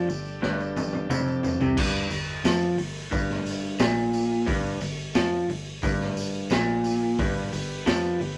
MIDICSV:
0, 0, Header, 1, 6, 480
1, 0, Start_track
1, 0, Tempo, 675676
1, 1262, Time_signature, 4, 2, 24, 8
1, 5952, End_track
2, 0, Start_track
2, 0, Title_t, "Electric slide guitar"
2, 0, Program_c, 0, 29
2, 0, Note_on_c, 0, 74, 90
2, 277, Note_off_c, 0, 74, 0
2, 5952, End_track
3, 0, Start_track
3, 0, Title_t, "Transistor combo organ"
3, 0, Program_c, 1, 18
3, 0, Note_on_c, 1, 50, 63
3, 0, Note_on_c, 1, 55, 56
3, 0, Note_on_c, 1, 62, 59
3, 0, Note_on_c, 1, 67, 58
3, 0, Note_on_c, 1, 69, 73
3, 1233, Note_off_c, 1, 55, 0
3, 1235, Note_off_c, 1, 69, 0
3, 1236, Note_off_c, 1, 67, 0
3, 1237, Note_off_c, 1, 50, 0
3, 1237, Note_off_c, 1, 62, 0
3, 5105, Note_on_c, 1, 50, 74
3, 5109, Note_on_c, 1, 67, 65
3, 5111, Note_on_c, 1, 59, 64
3, 5111, Note_on_c, 1, 71, 78
3, 5113, Note_on_c, 1, 55, 62
3, 5952, Note_off_c, 1, 50, 0
3, 5952, Note_off_c, 1, 55, 0
3, 5952, Note_off_c, 1, 59, 0
3, 5952, Note_off_c, 1, 67, 0
3, 5952, Note_off_c, 1, 71, 0
3, 5952, End_track
4, 0, Start_track
4, 0, Title_t, "Clean electric guitar"
4, 0, Program_c, 2, 27
4, 61, Note_on_c, 2, 43, 71
4, 254, Note_off_c, 2, 43, 0
4, 300, Note_on_c, 2, 43, 93
4, 773, Note_off_c, 2, 43, 0
4, 782, Note_on_c, 2, 41, 111
4, 1135, Note_off_c, 2, 41, 0
4, 1146, Note_on_c, 2, 48, 94
4, 1256, Note_off_c, 2, 48, 0
4, 1256, Note_on_c, 2, 43, 106
4, 1487, Note_off_c, 2, 43, 0
4, 1743, Note_on_c, 2, 53, 108
4, 1975, Note_off_c, 2, 53, 0
4, 1976, Note_on_c, 2, 43, 68
4, 2171, Note_off_c, 2, 43, 0
4, 2211, Note_on_c, 2, 43, 93
4, 2689, Note_off_c, 2, 43, 0
4, 2697, Note_on_c, 2, 46, 106
4, 3171, Note_on_c, 2, 43, 107
4, 3172, Note_off_c, 2, 46, 0
4, 3409, Note_off_c, 2, 43, 0
4, 3421, Note_on_c, 2, 43, 70
4, 3614, Note_off_c, 2, 43, 0
4, 3661, Note_on_c, 2, 53, 107
4, 3895, Note_off_c, 2, 53, 0
4, 3905, Note_on_c, 2, 43, 70
4, 4096, Note_off_c, 2, 43, 0
4, 4145, Note_on_c, 2, 43, 94
4, 4617, Note_off_c, 2, 43, 0
4, 4623, Note_on_c, 2, 46, 107
4, 5097, Note_off_c, 2, 46, 0
4, 5110, Note_on_c, 2, 43, 106
4, 5340, Note_off_c, 2, 43, 0
4, 5349, Note_on_c, 2, 43, 67
4, 5539, Note_off_c, 2, 43, 0
4, 5585, Note_on_c, 2, 53, 99
4, 5818, Note_off_c, 2, 53, 0
4, 5826, Note_on_c, 2, 43, 65
4, 5952, Note_off_c, 2, 43, 0
4, 5952, End_track
5, 0, Start_track
5, 0, Title_t, "Fingered electric bass"
5, 0, Program_c, 3, 33
5, 58, Note_on_c, 3, 31, 85
5, 284, Note_off_c, 3, 31, 0
5, 301, Note_on_c, 3, 31, 91
5, 753, Note_off_c, 3, 31, 0
5, 775, Note_on_c, 3, 29, 97
5, 1113, Note_off_c, 3, 29, 0
5, 1138, Note_on_c, 3, 36, 90
5, 1251, Note_off_c, 3, 36, 0
5, 1259, Note_on_c, 3, 31, 93
5, 1483, Note_off_c, 3, 31, 0
5, 1496, Note_on_c, 3, 31, 77
5, 1721, Note_off_c, 3, 31, 0
5, 1734, Note_on_c, 3, 41, 98
5, 1961, Note_off_c, 3, 41, 0
5, 1968, Note_on_c, 3, 31, 78
5, 2198, Note_off_c, 3, 31, 0
5, 2218, Note_on_c, 3, 31, 90
5, 2671, Note_off_c, 3, 31, 0
5, 2695, Note_on_c, 3, 34, 86
5, 3150, Note_off_c, 3, 34, 0
5, 3179, Note_on_c, 3, 31, 97
5, 3404, Note_off_c, 3, 31, 0
5, 3422, Note_on_c, 3, 31, 82
5, 3646, Note_off_c, 3, 31, 0
5, 3661, Note_on_c, 3, 41, 94
5, 3885, Note_off_c, 3, 41, 0
5, 3896, Note_on_c, 3, 31, 77
5, 4123, Note_off_c, 3, 31, 0
5, 4140, Note_on_c, 3, 31, 96
5, 4594, Note_off_c, 3, 31, 0
5, 4620, Note_on_c, 3, 34, 98
5, 5074, Note_off_c, 3, 34, 0
5, 5103, Note_on_c, 3, 31, 93
5, 5327, Note_off_c, 3, 31, 0
5, 5342, Note_on_c, 3, 31, 81
5, 5567, Note_off_c, 3, 31, 0
5, 5586, Note_on_c, 3, 41, 95
5, 5809, Note_off_c, 3, 41, 0
5, 5830, Note_on_c, 3, 31, 84
5, 5952, Note_off_c, 3, 31, 0
5, 5952, End_track
6, 0, Start_track
6, 0, Title_t, "Drums"
6, 68, Note_on_c, 9, 54, 73
6, 139, Note_off_c, 9, 54, 0
6, 179, Note_on_c, 9, 54, 30
6, 250, Note_off_c, 9, 54, 0
6, 303, Note_on_c, 9, 38, 56
6, 307, Note_on_c, 9, 54, 28
6, 374, Note_off_c, 9, 38, 0
6, 378, Note_off_c, 9, 54, 0
6, 428, Note_on_c, 9, 54, 29
6, 499, Note_off_c, 9, 54, 0
6, 542, Note_on_c, 9, 48, 77
6, 548, Note_on_c, 9, 54, 82
6, 613, Note_off_c, 9, 48, 0
6, 619, Note_off_c, 9, 54, 0
6, 660, Note_on_c, 9, 48, 69
6, 731, Note_off_c, 9, 48, 0
6, 782, Note_on_c, 9, 47, 85
6, 785, Note_on_c, 9, 54, 107
6, 853, Note_off_c, 9, 47, 0
6, 856, Note_off_c, 9, 54, 0
6, 905, Note_on_c, 9, 54, 29
6, 976, Note_off_c, 9, 54, 0
6, 1018, Note_on_c, 9, 43, 95
6, 1025, Note_on_c, 9, 54, 73
6, 1089, Note_off_c, 9, 43, 0
6, 1097, Note_off_c, 9, 54, 0
6, 1141, Note_on_c, 9, 43, 84
6, 1142, Note_on_c, 9, 54, 31
6, 1212, Note_off_c, 9, 43, 0
6, 1213, Note_off_c, 9, 54, 0
6, 1256, Note_on_c, 9, 54, 28
6, 1259, Note_on_c, 9, 36, 111
6, 1260, Note_on_c, 9, 49, 127
6, 1327, Note_off_c, 9, 54, 0
6, 1330, Note_off_c, 9, 36, 0
6, 1331, Note_off_c, 9, 49, 0
6, 1494, Note_on_c, 9, 54, 71
6, 1502, Note_on_c, 9, 46, 61
6, 1565, Note_off_c, 9, 54, 0
6, 1573, Note_off_c, 9, 46, 0
6, 1738, Note_on_c, 9, 46, 79
6, 1738, Note_on_c, 9, 54, 95
6, 1742, Note_on_c, 9, 38, 103
6, 1809, Note_off_c, 9, 46, 0
6, 1809, Note_off_c, 9, 54, 0
6, 1813, Note_off_c, 9, 38, 0
6, 1976, Note_on_c, 9, 46, 60
6, 2047, Note_off_c, 9, 46, 0
6, 2218, Note_on_c, 9, 36, 98
6, 2218, Note_on_c, 9, 46, 73
6, 2220, Note_on_c, 9, 54, 73
6, 2289, Note_off_c, 9, 36, 0
6, 2289, Note_off_c, 9, 46, 0
6, 2291, Note_off_c, 9, 54, 0
6, 2342, Note_on_c, 9, 38, 32
6, 2413, Note_off_c, 9, 38, 0
6, 2455, Note_on_c, 9, 46, 62
6, 2461, Note_on_c, 9, 54, 82
6, 2526, Note_off_c, 9, 46, 0
6, 2533, Note_off_c, 9, 54, 0
6, 2695, Note_on_c, 9, 54, 103
6, 2696, Note_on_c, 9, 46, 82
6, 2700, Note_on_c, 9, 38, 122
6, 2766, Note_off_c, 9, 54, 0
6, 2767, Note_off_c, 9, 46, 0
6, 2771, Note_off_c, 9, 38, 0
6, 2938, Note_on_c, 9, 46, 59
6, 2938, Note_on_c, 9, 54, 69
6, 3009, Note_off_c, 9, 46, 0
6, 3009, Note_off_c, 9, 54, 0
6, 3178, Note_on_c, 9, 36, 109
6, 3178, Note_on_c, 9, 46, 81
6, 3181, Note_on_c, 9, 54, 30
6, 3249, Note_off_c, 9, 36, 0
6, 3249, Note_off_c, 9, 46, 0
6, 3252, Note_off_c, 9, 54, 0
6, 3416, Note_on_c, 9, 54, 72
6, 3420, Note_on_c, 9, 46, 54
6, 3487, Note_off_c, 9, 54, 0
6, 3491, Note_off_c, 9, 46, 0
6, 3657, Note_on_c, 9, 46, 73
6, 3657, Note_on_c, 9, 54, 102
6, 3660, Note_on_c, 9, 38, 106
6, 3728, Note_off_c, 9, 46, 0
6, 3728, Note_off_c, 9, 54, 0
6, 3731, Note_off_c, 9, 38, 0
6, 3903, Note_on_c, 9, 46, 59
6, 3974, Note_off_c, 9, 46, 0
6, 4141, Note_on_c, 9, 36, 100
6, 4141, Note_on_c, 9, 54, 71
6, 4142, Note_on_c, 9, 46, 68
6, 4212, Note_off_c, 9, 36, 0
6, 4212, Note_off_c, 9, 54, 0
6, 4213, Note_off_c, 9, 46, 0
6, 4267, Note_on_c, 9, 38, 31
6, 4338, Note_off_c, 9, 38, 0
6, 4382, Note_on_c, 9, 46, 54
6, 4382, Note_on_c, 9, 54, 80
6, 4453, Note_off_c, 9, 46, 0
6, 4453, Note_off_c, 9, 54, 0
6, 4618, Note_on_c, 9, 54, 97
6, 4626, Note_on_c, 9, 46, 78
6, 4629, Note_on_c, 9, 38, 116
6, 4689, Note_off_c, 9, 54, 0
6, 4697, Note_off_c, 9, 46, 0
6, 4701, Note_off_c, 9, 38, 0
6, 4860, Note_on_c, 9, 54, 68
6, 4866, Note_on_c, 9, 46, 56
6, 4932, Note_off_c, 9, 54, 0
6, 4937, Note_off_c, 9, 46, 0
6, 5105, Note_on_c, 9, 54, 26
6, 5106, Note_on_c, 9, 36, 112
6, 5109, Note_on_c, 9, 46, 87
6, 5176, Note_off_c, 9, 54, 0
6, 5177, Note_off_c, 9, 36, 0
6, 5180, Note_off_c, 9, 46, 0
6, 5347, Note_on_c, 9, 54, 63
6, 5350, Note_on_c, 9, 46, 59
6, 5418, Note_off_c, 9, 54, 0
6, 5421, Note_off_c, 9, 46, 0
6, 5591, Note_on_c, 9, 46, 76
6, 5591, Note_on_c, 9, 54, 91
6, 5594, Note_on_c, 9, 38, 103
6, 5662, Note_off_c, 9, 46, 0
6, 5662, Note_off_c, 9, 54, 0
6, 5665, Note_off_c, 9, 38, 0
6, 5830, Note_on_c, 9, 46, 60
6, 5901, Note_off_c, 9, 46, 0
6, 5952, End_track
0, 0, End_of_file